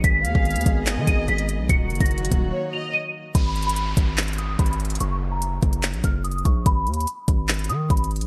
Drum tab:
HH |x-----------x-----------x--x--x--x--x-----------x-----------x-----------x-----x-----x-----------|x-----------x--x--x--x--x---x---x---x-----------------------------------------------------------|x-----------x---x---x---x-----------x-----------x--x--x--x--x-----------x---x---x---x--x--x--x--|x-----------------------x-----------x-----x-----x-----x-----x-----------x---x---x---x-----------|
CP |------------------------------------------------x-----------------------------------------------|------------------------------------------------------------------------------------------------|------------------------------------------------x-----------------------------------------------|------------------------------------------------x-----------------------------------------------|
BD |o-----------------o-----------------o-----------------------o-----------------------------------|o-----------------o-----------------o-----------------------------------------------------------|o-----------------------------------o-----------------------------------o-----------------------|------------------------------------o-----------------------o-----------------------o-----------|

HH |x-----------x---x---x---x-----------x-----------x--x--x--x--x-----------x---x---x---x--x--x-----|
CP |------------------------------------------------x-----------------------------------------------|
BD |o-----------------------------------o-----------------------------------o-----------------------|